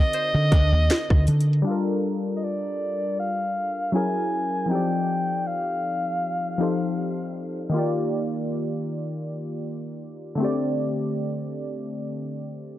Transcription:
0.00 1.22 D3 medium
0.00 1.23 C4 medium
0.00 1.24 D#4 medium
0.00 1.25 F#4 medium
0.00 0.57 A#4 medium
0.00 1.27 A#4 medium
0.00 1.29 D#5 medium
0.13 1.71 C5 medium
0.13 closed hi-hat medium
0.34 0.50 D3 loud
0.52 0.70 D2 medium
0.52 2.00 D4 medium
0.52 kick loud
0.52 closed hi-hat medium
0.72 0.88 D#2 medium
0.90 muted fingered electric bass stroke soft
0.90 snare loud
0.90 closed hi-hat medium
1.10 1.26 D2 medium
1.10 kick loud
1.10 cross-stick medium
1.27 1.62 D3 medium
1.27 closed hi-hat medium
1.27 open hi-hat medium
1.41 closed hi-hat medium
1.53 closed hi-hat medium
1.62 3.88 G3 medium
1.62 3.89 D4 medium
1.67 3.90 F4 medium
1.67 3.91 A4 medium
1.71 3.92 A#4 medium
2.37 2.45 D#5 medium
2.44 3.19 D5 medium
3.20 3.91 F5 loud
3.92 4.69 F#3 medium
3.92 4.69 C#4 medium
3.92 4.70 E4 medium
3.92 4.71 G#4 medium
3.92 4.73 G#5 loud
3.97 4.71 A#4 medium
4.66 6.54 F3 medium
4.66 6.55 C4 medium
4.66 6.56 D#4 medium
4.71 6.57 G4 soft
4.71 6.57 A4 medium
4.71 6.58 D5 medium
4.71 5.49 G5 loud
5.47 7.36 F5 medium
6.58 7.73 F3 medium
6.58 7.73 C4 soft
6.58 7.74 D#4 soft
6.58 7.74 G4 soft
6.58 7.74 A4 soft
6.63 7.75 C5 medium
7.70 10.33 D#3 medium
7.70 10.34 A#3 medium
7.74 10.35 F4 medium
7.74 10.37 G4 medium
7.79 10.38 D5 medium
10.35 12.79 D3 medium
10.35 12.79 A3 medium
10.40 12.79 C4 medium
10.40 12.79 G4 medium
10.44 12.79 D5 medium

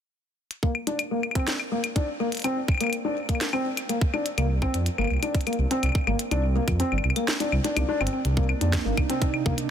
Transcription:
0.51 closed hi-hat medium
0.63 0.69 A#3 medium
0.63 kick loud
0.75 claves medium
0.87 0.97 D4 medium
0.87 closed hi-hat medium
0.99 closed hi-hat medium
0.99 claves medium
1.11 1.17 A#3 medium
1.23 claves soft
1.31 claves soft
1.35 1.47 C4 medium
1.35 kick loud
1.35 closed hi-hat medium
1.39 claves soft
1.48 snare loud
1.48 closed hi-hat medium
1.60 claves medium
1.72 1.77 A#3 medium
1.84 closed hi-hat medium
1.84 claves medium
1.96 2.05 D4 medium
1.96 kick medium
1.96 closed hi-hat medium
2.20 2.26 A#3 medium
2.32 closed hi-hat medium
2.35 closed hi-hat soft
2.37 closed hi-hat soft
2.39 closed hi-hat soft
2.42 2.56 C4 medium
2.42 closed hi-hat soft
2.44 closed hi-hat medium
2.44 claves soft
2.68 kick loud
2.68 claves soft
2.71 claves soft
2.75 claves soft
2.78 2.86 A#3 medium
2.78 closed hi-hat medium
2.78 claves soft
2.81 claves medium
2.84 claves medium
2.87 claves medium
2.90 closed hi-hat medium
2.90 claves medium
3.05 3.14 D4 medium
3.29 3.35 A#3 medium
3.29 kick loud
3.29 closed hi-hat medium
3.35 claves medium
3.41 snare loud
3.41 closed hi-hat medium
3.53 3.65 C4 medium
3.53 claves medium
3.77 closed hi-hat medium
3.77 claves medium
3.89 3.95 A#3 medium
3.89 closed hi-hat medium
4.01 kick loud
4.13 4.23 D4 medium
4.13 claves medium
4.26 closed hi-hat medium
4.38 4.66 C2 medium
4.38 4.44 A#3 medium
4.38 closed hi-hat medium
4.38 claves medium
4.62 4.73 C4 loud
4.62 kick loud
4.62 claves soft
4.74 4.89 F2 loud
4.74 closed hi-hat medium
4.86 closed hi-hat medium
4.98 5.06 G1 medium
4.98 5.04 A#3 medium
4.98 claves soft
5.01 claves soft
5.04 claves soft
5.07 5.18 C2 loud
5.07 claves soft
5.10 claves soft
5.13 claves soft
5.17 claves soft
5.20 5.32 D4 medium
5.20 closed hi-hat medium
5.20 claves soft
5.23 claves medium
5.35 kick loud
5.35 closed hi-hat soft
5.41 closed hi-hat soft
5.47 5.52 A#3 medium
5.47 closed hi-hat soft
5.47 claves soft
5.53 closed hi-hat soft
5.59 5.66 C2 medium
5.71 5.82 C4 loud
5.71 closed hi-hat medium
5.83 5.90 C2 medium
5.83 closed hi-hat medium
5.83 claves soft
5.86 claves soft
5.89 claves soft
5.92 kick loud
5.92 claves soft
5.98 claves soft
6.01 claves soft
6.04 6.15 G1 medium
6.04 6.13 A#3 medium
6.04 claves soft
6.07 claves medium
6.19 closed hi-hat medium
6.31 6.60 C2 loud
6.31 6.41 D4 medium
6.31 closed hi-hat soft
6.31 claves soft
6.55 6.61 A#3 medium
6.68 6.82 F2 medium
6.68 kick loud
6.68 closed hi-hat medium
6.68 claves soft
6.80 6.91 C4 loud
6.80 closed hi-hat medium
6.92 6.99 G1 medium
6.92 claves soft
6.98 claves soft
7.04 7.11 C2 loud
7.04 claves soft
7.10 claves medium
7.16 7.22 A#3 medium
7.16 closed hi-hat medium
7.16 claves soft
7.28 snare loud
7.40 7.50 D4 medium
7.40 closed hi-hat soft
7.52 7.60 C2 medium
7.52 claves soft
7.64 7.75 D4 medium
7.64 closed hi-hat medium
7.77 7.84 C2 medium
7.77 7.86 D4 medium
7.77 closed hi-hat soft
7.77 claves medium
7.89 8.00 D4 loud
8.01 8.08 G1 medium
8.01 8.06 C4 loud
8.01 claves soft
8.07 closed hi-hat medium
8.13 8.19 C4 medium
8.25 8.54 C2 loud
8.25 9.70 C3 medium
8.25 9.70 A#3 medium
8.25 9.70 D4 medium
8.25 9.70 D#4 medium
8.25 closed hi-hat medium
8.37 8.43 A#3 medium
8.37 kick loud
8.49 claves medium
8.61 8.76 F2 medium
8.61 8.71 D4 medium
8.61 closed hi-hat medium
8.73 kick loud
8.73 snare loud
8.73 closed hi-hat medium
8.85 8.93 G1 medium
8.85 8.91 A#3 medium
8.97 9.05 C2 loud
8.97 kick loud
8.97 claves medium
9.10 9.21 C4 loud
9.10 closed hi-hat medium
9.22 kick loud
9.22 closed hi-hat medium
9.34 claves medium
9.46 9.53 C2 medium
9.46 9.52 A#3 medium
9.46 kick loud
9.58 closed hi-hat medium

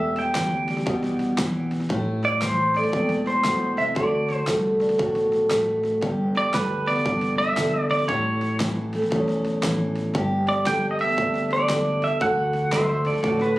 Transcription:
0.00 0.27 E1 medium
0.00 1.90 E2 medium
0.00 1.88 G4 medium
0.00 0.18 E5 medium
0.17 1.69 G5 medium
0.17 snare soft
0.35 0.79 D2 medium
0.35 1.38 E3 medium
0.35 kick medium
0.35 snare loud
0.35 hi-hat pedal medium
0.69 1.91 G3 medium
0.69 snare soft
0.78 snare soft
0.87 1.31 C2 medium
0.87 1.39 B2 medium
0.87 1.90 B3 medium
0.87 kick loud
0.87 snare soft
1.04 snare soft
1.20 snare soft
1.38 1.82 B1 medium
1.38 1.88 E3 medium
1.38 kick medium
1.38 snare loud
1.38 hi-hat pedal medium
1.72 snare soft
1.81 snare soft
1.90 2.77 A1 medium
1.90 2.93 A2 medium
1.90 3.97 E4 medium
1.90 kick loud
1.90 snare soft
2.24 2.41 D5 medium
2.24 snare soft
2.42 3.95 E3 medium
2.42 2.77 C5 medium
2.42 kick medium
2.42 snare loud
2.42 hi-hat pedal medium
2.75 3.95 A3 medium
2.75 3.24 D5 medium
2.75 snare soft
2.85 snare soft
2.93 3.80 E1 medium
2.93 3.97 E2 medium
2.93 3.95 C4 medium
2.93 kick medium
2.93 snare soft
3.10 snare soft
3.27 3.80 C5 medium
3.27 snare soft
3.45 3.78 B2 medium
3.45 kick medium
3.45 snare loud
3.45 hi-hat pedal medium
3.78 3.97 C3 medium
3.78 3.96 E5 medium
3.78 snare soft
3.96 4.40 D2 medium
3.96 6.53 D3 medium
3.96 4.99 F#4 medium
3.96 4.44 D5 medium
3.96 kick loud
3.96 snare soft
4.30 snare soft
4.47 4.92 C2 medium
4.47 5.49 A3 medium
4.47 kick medium
4.47 snare loud
4.47 hi-hat pedal medium
4.81 6.01 D4 medium
4.81 snare soft
4.90 snare soft
4.99 5.43 B1 medium
4.99 6.03 A2 medium
4.99 6.01 F#4 medium
4.99 kick loud
4.99 snare soft
5.16 snare soft
5.33 snare soft
5.51 5.95 A1 medium
5.51 6.00 A3 medium
5.51 kick medium
5.51 snare loud
5.51 hi-hat pedal medium
5.84 snare soft
6.02 6.46 G1 medium
6.02 7.04 G2 medium
6.02 8.07 G4 medium
6.02 kick loud
6.02 snare soft
6.36 6.55 D5 medium
6.36 snare soft
6.54 6.98 D2 medium
6.54 7.56 D3 medium
6.54 6.89 B4 medium
6.54 kick medium
6.54 snare medium
6.54 hi-hat pedal medium
6.87 8.07 B3 medium
6.87 7.38 D5 medium
6.87 snare soft
6.97 snare soft
7.06 7.50 C2 medium
7.06 8.07 G2 medium
7.06 8.07 D4 medium
7.06 kick loud
7.06 snare soft
7.22 snare soft
7.38 7.90 E5 medium
7.38 snare soft
7.57 8.01 B1 medium
7.57 8.09 D3 medium
7.57 kick medium
7.57 snare loud
7.57 hi-hat pedal medium
7.91 8.07 D5 medium
7.91 snare soft
8.00 snare soft
8.08 8.95 A1 medium
8.08 9.12 A2 medium
8.08 10.15 E4 medium
8.08 8.56 C#5 medium
8.08 kick loud
8.08 snare soft
8.42 snare soft
8.60 9.63 E3 medium
8.60 kick medium
8.60 snare loud
8.60 hi-hat pedal medium
8.94 10.13 A3 medium
8.94 snare soft
9.03 snare soft
9.12 9.56 B1 medium
9.12 10.15 E2 medium
9.12 10.14 C#4 medium
9.12 kick loud
9.12 snare soft
9.29 snare soft
9.46 snare soft
9.63 10.07 A1 medium
9.63 10.13 E3 medium
9.63 kick medium
9.63 snare loud
9.63 hi-hat pedal medium
9.97 snare soft
10.15 11.01 G1 medium
10.15 11.18 G2 medium
10.15 12.19 G4 medium
10.15 kick loud
10.15 snare soft
10.48 10.65 D5 medium
10.48 snare soft
10.66 11.70 D3 medium
10.66 10.89 G5 medium
10.66 kick medium
10.66 snare medium
10.66 hi-hat pedal medium
10.91 11.00 D#5 medium
11.00 12.20 B3 medium
11.00 11.48 E5 medium
11.00 snare soft
11.09 snare soft
11.18 12.04 D2 medium
11.18 12.20 G2 medium
11.18 13.07 D4 medium
11.18 kick loud
11.18 snare soft
11.35 snare soft
11.52 12.05 D5 medium
11.52 snare soft
11.69 12.20 D3 medium
11.69 kick medium
11.69 snare loud
11.69 hi-hat pedal medium
12.03 12.21 E5 medium
12.03 snare soft
12.21 13.08 D2 medium
12.21 13.59 D3 medium
12.21 13.24 F#4 medium
12.21 12.69 F#5 medium
12.21 kick loud
12.21 snare soft
12.54 snare soft
12.72 13.59 A3 medium
12.72 12.88 C5 medium
12.72 12.88 E5 medium
12.72 kick medium
12.72 snare loud
12.72 hi-hat pedal medium
12.89 13.05 C5 medium
12.89 13.06 E5 medium
13.06 13.59 D4 medium
13.06 13.21 A4 medium
13.06 13.22 D5 medium
13.06 snare soft
13.15 snare soft
13.23 13.59 A1 medium
13.23 13.59 A2 medium
13.23 13.59 F#4 medium
13.23 13.39 A4 medium
13.23 13.40 D5 medium
13.23 kick loud
13.23 snare soft
13.41 13.56 F#4 medium
13.41 13.56 B4 medium
13.41 snare soft

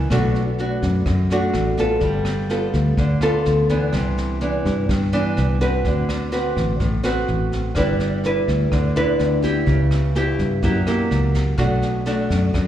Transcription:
0.10 0.79 B1 medium
0.10 1.04 B2 medium
0.10 0.42 A3 medium
0.10 0.42 D4 soft
0.10 0.42 F#4 medium
0.10 kick medium
0.10 cross-stick medium
0.10 snare soft
0.35 snare soft
0.58 1.07 A3 soft
0.58 1.07 D4 soft
0.58 1.07 F#4 medium
0.58 snare soft
0.82 1.05 F#2 medium
0.82 kick soft
0.82 snare soft
1.06 1.51 F#2 medium
1.06 2.00 F#2 soft
1.06 kick soft
1.06 cross-stick medium
1.06 snare soft
1.30 1.75 A3 medium
1.30 1.75 D4 medium
1.30 1.75 F#4 medium
1.30 snare soft
1.54 1.99 A1 medium
1.54 cross-stick soft
1.54 snare soft
1.77 2.47 B3 medium
1.77 2.47 F4 medium
1.77 2.47 A4 medium
1.77 kick soft
1.77 snare soft
2.00 2.69 G1 medium
2.00 2.96 G3 soft
2.00 kick soft
2.00 snare soft
2.25 cross-stick soft
2.25 snare soft
2.49 3.18 B3 soft
2.49 3.18 F4 soft
2.49 3.18 A4 medium
2.49 snare soft
2.73 2.96 D2 medium
2.73 kick soft
2.73 snare soft
2.97 3.42 D2 medium
2.97 3.91 D3 soft
2.97 kick soft
2.97 snare soft
3.21 3.66 B3 medium
3.21 3.66 F4 medium
3.21 3.66 A4 medium
3.21 cross-stick soft
3.21 snare soft
3.45 3.91 D2 medium
3.45 snare soft
3.69 4.38 E3 medium
3.69 4.38 B3 medium
3.69 4.38 D4 medium
3.69 kick soft
3.69 snare soft
3.93 4.61 C2 medium
3.93 4.86 C3 medium
3.93 kick medium
3.93 cross-stick medium
3.93 snare soft
4.17 snare soft
4.41 4.89 E3 soft
4.41 4.89 B3 medium
4.41 4.89 D4 medium
4.41 snare soft
4.65 4.88 G2 medium
4.65 kick soft
4.65 snare soft
4.89 5.34 G2 medium
4.89 5.82 G2 soft
4.89 kick medium
4.89 cross-stick medium
4.89 snare soft
5.13 5.57 E3 medium
5.13 5.57 B3 medium
5.13 5.57 D4 medium
5.13 snare soft
5.37 5.82 C2 medium
5.37 cross-stick soft
5.37 snare soft
5.61 6.29 C4 medium
5.61 6.29 F#4 medium
5.61 6.29 B4 medium
5.61 kick soft
5.61 snare soft
5.85 6.53 D2 medium
5.85 6.78 D3 soft
5.85 kick medium
5.85 snare soft
6.09 cross-stick soft
6.09 snare soft
6.32 6.80 C4 soft
6.32 6.80 F#4 soft
6.32 6.80 B4 soft
6.32 snare soft
6.56 6.79 A1 medium
6.56 kick soft
6.56 snare soft
6.80 7.25 A1 medium
6.80 7.73 A2 soft
6.80 kick medium
6.80 snare soft
7.04 7.72 C4 medium
7.04 7.72 F#4 medium
7.04 7.72 B4 medium
7.04 cross-stick soft
7.04 snare soft
7.28 7.73 A1 medium
7.28 snare soft
7.52 kick soft
7.52 snare soft
7.75 8.44 G1 medium
7.75 8.69 G3 medium
7.75 8.20 D4 medium
7.75 8.21 E4 soft
7.75 8.21 B4 medium
7.75 kick medium
7.75 cross-stick medium
7.75 snare soft
7.99 snare soft
8.24 8.92 D4 soft
8.24 8.93 E4 medium
8.24 8.93 B4 medium
8.24 snare soft
8.48 8.70 D2 medium
8.48 kick soft
8.48 snare soft
8.72 9.16 D2 medium
8.72 9.65 D3 soft
8.72 kick medium
8.72 cross-stick medium
8.72 snare soft
8.96 9.40 D4 medium
8.96 9.40 E4 medium
8.96 9.40 B4 medium
8.96 snare soft
9.19 9.64 D2 medium
9.19 cross-stick soft
9.19 snare soft
9.42 10.11 B3 medium
9.42 10.11 E4 medium
9.42 10.11 G4 medium
9.42 kick soft
9.42 snare soft
9.66 10.35 C#2 medium
9.66 10.60 C#3 medium
9.66 kick medium
9.66 snare soft
9.91 cross-stick medium
9.91 snare soft
10.15 10.61 B3 medium
10.15 10.62 E4 medium
10.15 10.62 G4 medium
10.15 snare soft
10.39 10.61 G2 medium
10.39 kick soft
10.39 snare soft
10.62 11.08 F#2 medium
10.62 11.56 F#3 soft
10.62 10.77 A#3 soft
10.62 10.77 E4 soft
10.62 10.78 G4 medium
10.62 kick medium
10.62 snare soft
10.87 11.55 A#3 medium
10.87 11.55 E4 medium
10.87 11.55 G4 medium
10.87 cross-stick medium
10.87 snare soft
11.11 11.56 C#2 medium
11.11 snare soft
11.34 kick soft
11.34 snare soft
11.58 12.26 B1 medium
11.58 12.51 B2 medium
11.58 12.02 A3 medium
11.58 12.03 D4 medium
11.58 12.03 F#4 medium
11.58 kick medium
11.58 cross-stick medium
11.58 snare soft
11.82 snare soft
12.06 12.54 A3 medium
12.06 12.54 D4 medium
12.06 12.54 F#4 medium
12.06 snare soft
12.30 12.53 F#2 medium
12.30 kick soft
12.30 snare soft
12.54 12.67 F#2 soft
12.54 12.67 F#2 medium
12.54 kick medium
12.54 cross-stick medium
12.54 snare soft

